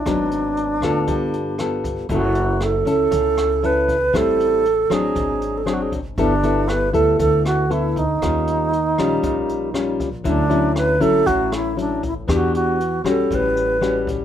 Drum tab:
HH |xxxxxxxx|xxxxxxxx|xxxxxxxx|xxxxxxxx|
SD |r--r--r-|--r--r--|r--r--r-|--r--r--|
BD |o---o--o|o---o--o|o---o--o|o---o--o|

HH |xxxxxxxx|xxxxxxxx|xxxxxxxx|
SD |r--r--r-|--r--r--|r--r--r-|
BD |o---o--o|o---o--o|o---o--o|